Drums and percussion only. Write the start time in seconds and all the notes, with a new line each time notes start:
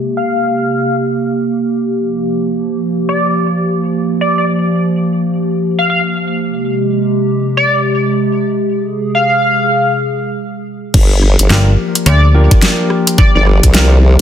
10.94 kick, closed hi-hat, crash
11.22 cross-stick
11.39 closed hi-hat
11.50 snare, closed hi-hat
11.95 closed hi-hat
12.06 closed hi-hat
12.51 kick, closed hi-hat
12.62 snare, closed hi-hat
12.90 cross-stick
13.07 closed hi-hat
13.18 kick, closed hi-hat
13.46 cross-stick
13.63 kick, closed hi-hat
13.74 snare, closed hi-hat